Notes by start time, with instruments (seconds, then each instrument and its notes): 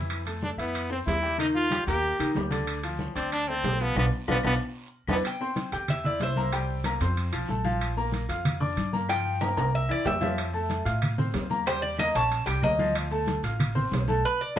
Already playing: upright bass F2, upright piano E3 E4
0.10 high conga, high timbale, long guiro, claves
0.26 upright piano A3 A4, high conga, high timbale
0.43 trombone D4, high conga, low timbale, short guiro
0.57 upright bass F2, trombone B3, upright piano E4 E5, high conga, high timbale, short guiro
0.75 high conga, high timbale, long guiro, claves
0.90 upright piano C4 C5, trombone C4, high conga
1.07 upright bass D#2, trombone E4, high conga, high timbale, low timbale, short guiro
1.22 upright piano G3 G4, short guiro
1.38 upright piano D#3 D#4, trombone D#4, high conga, high timbale, long guiro, claves
1.55 trombone F4, high conga
1.71 upright piano G3 G4, high conga, high timbale, low timbale, short guiro, claves
1.87 upright bass D#2, upright piano A#3 A#4, trombone G4, high conga, high timbale, short guiro
2.03 high conga, long guiro
2.19 upright bass D#2, upright piano D#3 D#4, high conga, high timbale, claves
2.35 upright bass D2, upright piano G3 G4, high conga, low timbale, short guiro
2.50 upright piano D3 D4, high conga, high timbale, short guiro
2.67 high conga, high timbale, long guiro, claves
2.83 upright piano F3 F4, high conga, high timbale
2.99 high conga, low timbale, short guiro
3.15 upright bass D2, trombone C4, upright piano D4 D5, high conga, high timbale, short guiro
3.31 trombone D4, high conga, high timbale, long guiro, claves
3.48 upright piano A3 A4, trombone C4, high conga
3.63 upright bass B1, high conga, high timbale, low timbale, short guiro
3.80 upright piano F3 F4, trombone B3, high conga, short guiro
3.95 upright bass B1, upright piano B3 D4 F4, trombone B3, high conga, high timbale, long guiro, claves
4.28 upright bass B1, upright piano B3 D4 F4, trombone B3, high conga, high timbale, long guiro, claves
4.43 upright bass B1, upright piano B3 D4 F4, trombone B3, high conga, high timbale, long guiro, claves
5.07 upright bass E2, upright piano B3 D4 E4, trombone B3, high conga, high timbale, long guiro, claves
5.24 cuban tres G5, high timbale, long guiro, claves
5.41 upright piano C4 C5 C6, high conga
5.56 high conga, high timbale, short guiro
5.72 upright bass E2, upright piano G4 G5 G6, high conga, high timbale, short guiro
5.88 cuban tres E5, high conga, low conga, high timbale, long guiro, claves
6.04 upright piano E4 E5 E6, cuban tres D5, high conga, low conga
6.20 upright bass C2, cuban tres C5 E5, high conga, high timbale, low timbale, short guiro
6.36 upright piano A#3 A#4 A#5, high conga, short guiro
6.52 upright piano G3 G4 G5, high conga, high timbale, long guiro, claves
6.68 high conga
6.84 upright piano A#3 A#4 A#5, high conga, high timbale, short guiro, claves
7.00 upright bass F2, upright piano C4 C5 C6, high conga, high timbale, short guiro
7.16 high conga, high timbale, long guiro
7.33 upright bass B1, upright piano F3 F4 F5, high conga, high timbale, claves
7.48 upright bass A#1, upright piano A3 A4 A5, high conga, short guiro
7.65 upright piano F3 F4 F5, high conga, short guiro
7.80 high conga, high timbale, long guiro, claves
7.96 upright piano A#3 A#4 A#5, high conga
8.12 high conga, high timbale, short guiro
8.29 upright bass F2, upright piano F4 F5 F6, high conga, high timbale, short guiro
8.45 high conga, low conga, high timbale, long guiro, claves
8.60 upright piano D4 D5 D6, high conga, low conga
8.77 upright bass G2, high conga, high timbale, short guiro
8.93 upright piano A#3 A#4 A#5, high conga, short guiro
9.09 upright piano F3 F4 F5, cuban tres G5, high conga, high timbale, long guiro, claves
9.26 high conga
9.41 upright piano A#3 A#4 A#5, high conga, high timbale, short guiro, claves
9.57 upright bass C2, upright piano A#3 A#4 A#5, high conga, high timbale, short guiro
9.73 cuban tres E5, high conga, long guiro
9.89 upright bass E2, upright piano E3 E4 E5, cuban tres D5, high conga, claves
10.05 upright bass F2, upright piano G3 G4 G5, cuban tres E5, high conga, low timbale, short guiro
10.21 upright piano F3 F4 E5, high conga, low timbale, short guiro
10.38 high conga, high timbale, long guiro, claves
10.53 upright piano A3 A4 A5, high conga
10.70 high conga, high timbale, short guiro
10.85 upright bass A2, upright piano F4 F5 F6, high timbale, short guiro
11.02 high conga, low conga, high timbale, long guiro, claves
11.18 upright piano C4 C5 C6, high conga, low conga
11.34 upright bass D#2, high conga, high timbale, low timbale, short guiro
11.50 upright piano A#3 A#4 A#5, high conga, short guiro
11.66 upright piano G3 G4 G5, cuban tres C5, high conga, high timbale, long guiro, claves
11.82 cuban tres D5, high conga
11.98 upright piano A#3 A#4 A#5, cuban tres D#5, high conga, high timbale, short guiro, claves
12.15 upright bass A#1, upright piano C#4 C#5 C#6, cuban tres A5, high conga, high timbale, short guiro
12.31 high conga, high timbale, long guiro
12.46 upright bass C2, upright piano G3 G4 G5, cuban tres G5, high conga, high timbale, claves
12.62 upright bass D2, upright piano A#3 A#4 A#5, cuban tres D#5, high conga, low timbale, short guiro
12.79 upright piano F3 F4 F5, high conga, short guiro
12.95 high timbale, long guiro, claves
13.11 upright piano A3 A4 A5, high conga
13.27 high conga, high timbale, short guiro
13.43 upright bass A1, upright piano F4 F5 F6, high conga, high timbale, short guiro
13.60 high conga, low conga, high timbale, long guiro, claves
13.75 upright piano C4 C5 C6, high conga, low conga
13.91 upright bass B1, high conga, high timbale, low timbale, short guiro
14.08 upright piano A3 A4 A5, high conga, short guiro
14.25 cuban tres B4
14.41 cuban tres D5
14.56 upright piano F4 A4